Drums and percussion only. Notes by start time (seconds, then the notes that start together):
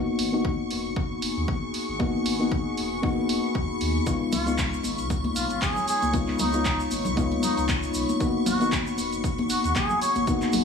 0.19 open hi-hat
0.45 kick
0.71 open hi-hat
0.96 kick
1.22 open hi-hat
1.48 kick
1.74 open hi-hat
2.00 kick
2.26 open hi-hat
2.52 kick
2.77 open hi-hat
3.03 kick
3.29 open hi-hat
3.55 kick
3.81 open hi-hat
4.06 kick, closed hi-hat, shaker
4.32 open hi-hat, high conga, low conga, shaker
4.47 closed hi-hat, shaker
4.58 kick, clap, closed hi-hat, shaker
4.73 shaker
4.83 open hi-hat, high conga, shaker
4.98 closed hi-hat, shaker
5.10 kick, closed hi-hat, shaker
5.24 closed hi-hat, high conga
5.36 open hi-hat, shaker
5.50 closed hi-hat, shaker
5.62 kick, clap, closed hi-hat, high conga, shaker
5.76 low conga, shaker
5.88 open hi-hat, shaker
6.02 closed hi-hat, high conga, shaker
6.14 kick, closed hi-hat, shaker
6.28 clap
6.39 open hi-hat, high conga, low conga, shaker
6.53 closed hi-hat, shaker
6.65 kick, clap, closed hi-hat, shaker
6.80 shaker
6.91 open hi-hat, high conga, shaker
7.05 closed hi-hat, low conga, shaker
7.17 kick, closed hi-hat, shaker
7.31 closed hi-hat, high conga
7.43 open hi-hat, low conga, shaker
7.57 closed hi-hat, shaker
7.69 kick, clap, closed hi-hat, high conga, shaker
7.83 shaker
7.94 open hi-hat, shaker
8.09 closed hi-hat, high conga, shaker
8.20 kick, closed hi-hat, shaker
8.46 open hi-hat, high conga, low conga, shaker
8.61 closed hi-hat, shaker
8.72 kick, clap, closed hi-hat, shaker
8.87 shaker
8.97 open hi-hat, high conga, shaker
9.12 closed hi-hat, shaker
9.24 kick, closed hi-hat, shaker
9.38 closed hi-hat, high conga
9.49 open hi-hat, shaker
9.64 closed hi-hat, shaker
9.75 kick, clap, closed hi-hat, high conga, shaker
9.89 low conga, shaker
10.01 open hi-hat, shaker
10.15 closed hi-hat, high conga, shaker
10.27 kick, closed hi-hat, shaker
10.41 clap, shaker
10.53 open hi-hat, high conga, low conga, shaker